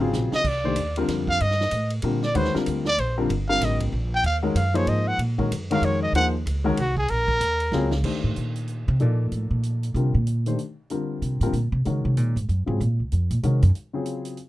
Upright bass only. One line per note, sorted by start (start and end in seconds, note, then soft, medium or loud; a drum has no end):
0.00 0.13 G#1 medium
0.13 0.31 A#1 medium
0.33 muted upright bass stroke soft
0.44 0.75 C2 medium
0.77 1.08 D#2 medium
1.09 1.39 F2 medium
1.41 1.71 G2 medium
1.72 2.02 A2 medium
2.03 2.34 A#2 medium
2.35 2.53 D#2 medium
2.55 muted upright bass stroke soft
2.67 2.97 D2 medium
2.98 3.29 A#1 medium
3.29 3.60 G1 medium
3.61 3.92 A1 loud
3.92 4.23 A#1 medium
4.23 4.54 D#2 medium
4.55 4.86 F#2 medium
4.87 5.18 G#2 medium
5.18 5.50 A#2 medium
5.51 5.81 F#2 medium
5.81 6.12 F2 loud
6.13 6.44 D#2 medium
6.46 6.77 C#2 medium
6.77 7.08 C2 medium
7.10 7.40 A#1 medium
7.40 7.71 D#2 medium
7.72 8.03 C#2 loud
8.24 8.36 A2 medium
8.37 8.84 A#2 medium
8.88 9.02 C3 loud
9.02 9.31 A#2 medium
9.32 9.50 A2 medium
9.51 9.91 A#2 medium
9.94 10.13 C3 medium
10.14 10.55 A#2 medium
11.22 11.40 C3 medium
11.41 11.52 A2 medium
11.53 11.72 A#2 medium
11.72 11.84 C3 medium
11.86 12.04 C#3 medium
12.05 12.17 C3 medium
12.17 12.35 A#2 medium
12.36 12.48 G#2 medium
12.49 12.67 F#2 medium
12.67 12.79 G#2 medium
12.80 12.99 A#2 medium
13.00 13.11 C#2 soft
13.12 13.30 F2 medium
13.30 13.42 A#2 medium
13.43 13.62 C3 medium
13.63 13.70 F#2 loud